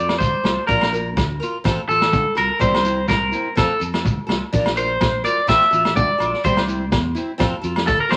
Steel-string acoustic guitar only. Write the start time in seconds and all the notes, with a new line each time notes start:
Already playing: A4
0.00 F4
0.44 F4 A4
0.68 D4 F4 A#4
0.92 F4 A#4
1.40 F4 A#4
1.64 C4 F4 A4
1.91 F4
2.35 F4 A4
2.59 G3 C4 E4
2.83 C4 E4
3.32 C4 E4
3.56 C4 F4 A4
3.80 A4
4.27 F4 A4
4.53 D4 F4 A#4
4.76 F4 A#4
5.24 F4 A#4
5.47 C4 F4 A4
5.71 F4 A4
6.18 F4 A4
6.44 G3 C4 E4
6.67 C4 E4
7.15 C4 E4
7.38 C4 F4 A4
7.62 F4 A4
8.09 F4 A4